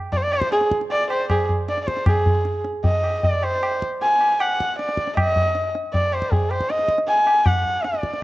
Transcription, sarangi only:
0.12 D5
0.17 C5
0.23 D5
0.33 C5
0.52 G#4
0.91 D5
1.11 C5
1.30 G#4
1.69 D5
1.83 C5 D5
2.08 G#4
2.85 D#5
3.24 D5
3.44 C5
4.02 G#5
4.40 F#5
4.79 D5
5.17 D#5
5.93 D5
6.13 C5
6.32 G#4
6.50 C5
6.70 D#5
7.09 G#5
7.46 F#5
7.84 D5

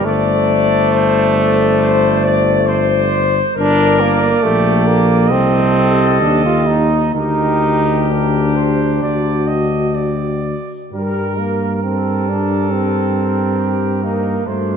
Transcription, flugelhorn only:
0.03 D5
3.56 D5
5.28 D#5
7.15 A#4
8.10 A#4
8.56 C5
9.03 D5
9.47 D#5
9.95 D5
10.93 A#4
14.47 C5

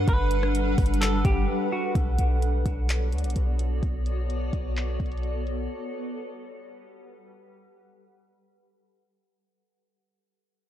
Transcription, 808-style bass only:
0.08 G1
0.78 G1
1.25 G1
1.95 B1
2.19 B1
2.66 B1
3.12 D2
3.24 B1
3.36 B1
3.83 B1
4.53 B1
5.00 B1

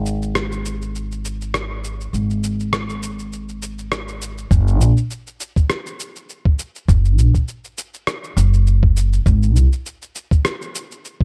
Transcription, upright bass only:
Already playing: G#1
2.13 G#1
4.51 F#1
4.81 A#1
6.88 F#1
7.18 A#1
8.37 F#1
9.26 G#1
9.56 C2

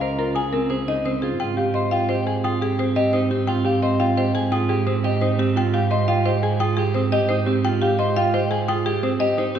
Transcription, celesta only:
0.01 D#5
0.18 A#5
0.35 D#6
0.70 D#6
1.05 D#6
1.57 F5
1.75 C6
1.92 G5
2.09 D#5
2.27 G#5
2.44 D#6
2.79 D#6
2.96 D#5
3.13 D#6
3.65 F5
3.83 C6
4.00 G5
4.17 D#5
4.35 G#5
4.52 D#6
4.87 D#6
5.04 D#5
5.22 D#6
5.74 F5
5.91 C6
6.09 G5
6.26 D#5
6.43 G#5
6.60 D#6
6.95 D#6
7.30 D#6
7.82 F5
7.99 C6
8.17 G5
8.33 D#5
8.51 G#5
8.68 D#6
9.03 D#6
9.38 D#6

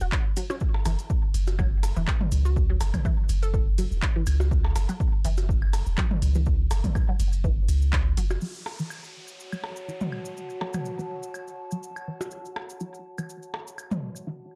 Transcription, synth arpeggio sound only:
0.01 F#4
0.37 F#3
0.50 C#4
0.86 E3
1.59 F#3
1.96 E3
2.69 F#3
3.05 E3
3.78 F#3
4.16 E3
4.89 F#3
5.25 E3
5.98 F#3
6.35 E3
7.09 F#3
7.44 E3
8.17 F#3
8.42 F#3
8.79 E3
9.52 F#3
9.88 E3
10.61 F#3
10.99 E3
11.72 F#3
12.08 E3
12.81 F#3
13.18 E3
13.91 F#3
14.27 E3

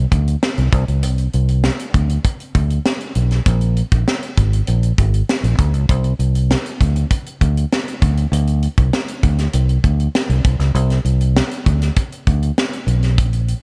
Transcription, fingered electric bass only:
0.12 D2
0.58 C2
0.73 C2
0.88 C#2
1.04 C2
1.34 C2
1.94 D2
2.55 D2
3.16 B1
3.46 A#1
3.92 A#1
4.37 G#1
4.68 A#1
4.98 G#1
5.43 A#1
5.59 D2
5.73 C#2
5.89 C2
6.19 C2
6.81 D2
7.41 D2
8.02 D2
8.32 D2
8.78 C2
9.23 D2
9.54 C2
9.84 D2
10.29 C2
10.45 C2
10.59 C#2
10.74 C2
11.05 C2
11.66 D2
12.27 D2
12.87 B1
13.18 A#1

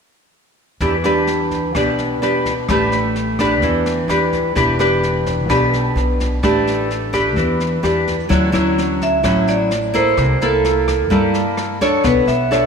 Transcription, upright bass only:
0.81 E2
1.75 B1
2.21 E2
2.69 A1
3.62 E2
4.08 E2
4.56 E1
5.50 B1
5.95 B1
6.43 A1
7.37 E2
7.83 E2
8.30 D2
8.54 D2
9.24 A1
10.18 C2
11.11 G2
12.04 B1
12.26 B1

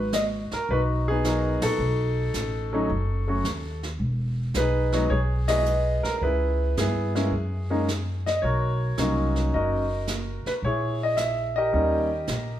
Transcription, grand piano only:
Already playing: F#4
0.14 D#5
0.53 A#4
0.71 D#4 F#4 B4
1.08 B3 D#4 G#4
1.24 F#3 B3 D#4 A#4
1.63 D#4 F#4 A4
2.73 F#3 A3 C#4 D#4
3.28 F#3 A3 C#4 F#4
4.57 D#4 G#4 B4
4.93 F#3 G#3 B3 D#4
5.10 G#4 C#5
5.48 F#3 G#3 B3 E4 G#4 B4 D#5
6.03 A#4
6.17 A#4
6.22 E4 G#4 B4
6.78 B3 E4 G#4
7.15 G#3 A#3 C#4 E4
7.70 G#3 A#3 C#4 D#4
8.26 D#5
8.42 F#4 A#4 C#5
8.98 F#3 A#3 C#4 D#4
9.54 F#4 A#4 D#5
10.47 B4
10.65 E4 G#4 C#5
11.03 D#5
11.17 E5
11.56 G4 A#4 D#5
11.73 G3 A#3 C#4 D#4

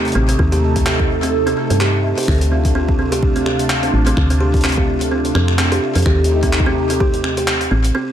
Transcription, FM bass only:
Already playing: D#2
0.15 A1
0.39 D#2
1.70 G2
2.28 D2
3.93 A1
4.17 D2
5.35 F2
5.95 F2
6.06 D#2
7.71 A1

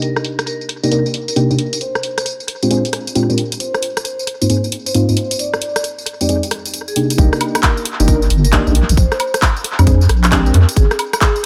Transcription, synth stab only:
Already playing: C3 A#3 D4 D#4 G4
0.83 C3 A#3 D4 D#4 G4
0.91 C3 A#3 D4 D#4 A#4
1.36 C3 A#3 D4 D#4 G4
1.50 C3 A#3 D4 D#4 G4
2.63 A#2 G#3 C4 D4 F4 G4
2.71 A#2 G#3 C4 D4 F4 G#4
3.15 A#2 G#3 C4 D4 F4 G4
3.29 A#2 G#3 C4 D4 F4 G4
4.41 G#2 A#3 C4 D#4 F4
4.50 G#2 A#3 C4 D#4 G#4
4.94 G#2 A#3 C4 D#4 F4
5.09 G#2 A#3 C4 D#4 F4
6.21 F2 G#3 C4 D#4 G4
6.29 F2 G#3 C4 D#4 G#4
6.96 C3 A#3 D4 D#4 G4
7.18 A#3 D4 D#4 G4
8.00 A#3 D4 D#4 G4
8.08 A#3 D4 D#4 A#4
8.53 A#3 D4 D#4 G4
8.67 A#3 D4 D#4 G4
9.79 G#3 C4 D4 G4
9.87 G#3 C4 D4 G#4
10.32 G#3 C4 D4 G4
10.46 G#3 C4 D4 G4

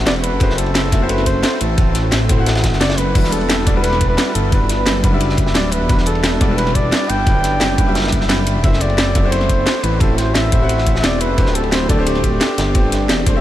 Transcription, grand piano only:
Already playing: A3 C4 E4 F#4 A4 C5 E5 F#5
0.39 A3 C4 E4 F#4 C5
0.92 A3 C4 E4 F#4 E5
1.00 A3 C4 E4 F#4 C5
1.76 A3 C4 E4 F#4 C5
2.29 A3 C4 E4 F#4 C5
2.37 A3 C4 E4 F#4 F#5
3.14 G3 D4 E4 F#4 B4
3.66 G3 D4 E4 F#4 D5
3.74 G3 D4 E4 F#4 B4
4.51 G3 D4 E4 F#4 B4
5.03 G3 D4 E4 F#4 B4
5.11 G3 D4 E4 F#4 E5
5.88 G3 D4 E4 F#4 B4
6.40 G3 D4 E4 F#4 D5
6.48 G3 D4 E4 F#4 B4
7.25 F#3 G3 D4 E4 B4
7.78 G3 D4 E4 F#4 B4
7.86 G3 D4 E4 F#4 E5
8.63 A3 C4 E4 F#4 C5
9.15 A3 C4 E4 F#4 E5
9.23 A3 C4 E4 F#4 C5
10.00 A3 C4 E4 F#4 C5
10.52 A3 C4 E4 F#4 C5
10.60 A3 C4 E4 F#4 F#5
11.37 A3 C4 D4 G4 C5
11.89 A3 C4 D4 G4 D5
11.97 A3 C4 D4 G4 C5
12.74 A3 C4 D4 G4 C5
13.26 A3 C4 D4 G4 C5
13.34 A3 C4 D4 G4 E5

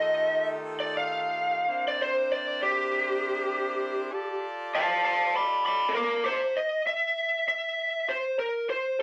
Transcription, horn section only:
Already playing: D#3 A3 D#4 F4 G4 A4
1.68 C4 D4 E4 A#4 C5
4.12 F4 G4 A4 D5 A5

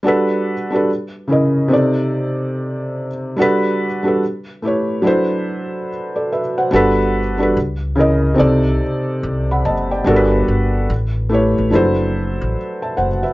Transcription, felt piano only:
0.03 G3 D4 F#4 A4
0.08 B4
0.70 G3 D4 F#4
0.74 A4 B4
1.28 C#3 C#4 E4 A#4
1.32 D#5
1.68 C3 C4 D#4 A4
1.73 D5
3.36 G3 D4 F#4 A4
3.42 B4
4.03 G3 D4 F#4 A4
4.08 B4
4.62 A3 E4 G4 B4
4.67 C#5
5.02 F#3 D4 E4 A4
5.06 B4 C5
6.16 A4 D5
6.32 B4 E5
6.58 C5 F#5
6.71 G3 D4 F#4 A4
6.76 B4
7.38 G3 D4 F#4 A4
7.43 B4
7.96 C#3 C#4 E4 A#4
8.00 D#5
8.34 C3 C4 D#4 A4
8.39 D5
9.51 F#5 B5
9.65 D#5 A5
9.91 D5 G5
10.04 G3 D4 F#4 A4
10.10 A#4
10.16 B4
11.29 A3 E4 G4 B4
11.34 C#5
11.70 F3 D4 E4 A4
11.74 F#3 B4 C5
12.82 E5 A5
12.97 C5 F#5
13.23 B4 E5

